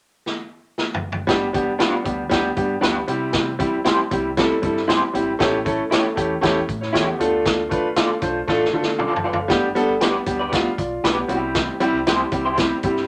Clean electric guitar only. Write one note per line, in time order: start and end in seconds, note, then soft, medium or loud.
1.79 1.93 D4 medium
1.79 1.94 G4 medium
1.79 1.94 B4 medium
2.81 2.96 D4 medium
2.81 2.96 G4 medium
2.81 2.96 B4 medium
3.85 3.99 E4 medium
3.85 3.99 G4 medium
3.85 3.99 C5 medium
4.88 5.02 E4 medium
4.88 5.02 G4 medium
4.88 5.02 C5 medium
5.91 6.05 E4 medium
5.91 6.05 G4 medium
5.91 6.05 C#5 medium
6.93 7.07 E4 medium
6.93 7.07 G4 medium
6.93 7.07 C#5 medium
7.96 8.10 F4 medium
7.96 8.10 A4 medium
7.96 8.11 D5 medium
8.99 9.12 F4 medium
8.99 9.13 A4 medium
8.99 9.13 D5 medium
9.24 9.35 F4 medium
9.24 9.35 A4 medium
9.24 9.36 D5 medium
10.01 10.15 G4 medium
10.01 10.15 B4 medium
10.01 10.16 D5 medium
10.39 10.51 G4 soft
10.39 10.51 B4 soft
10.39 10.50 D5 soft
11.04 11.18 G4 medium
11.04 11.18 B4 medium
11.04 11.18 D5 medium
12.07 12.21 E4 medium
12.07 12.21 G4 medium
12.07 12.21 C5 medium
12.45 12.57 E4 soft
12.45 12.56 G4 medium
12.45 12.56 C5 medium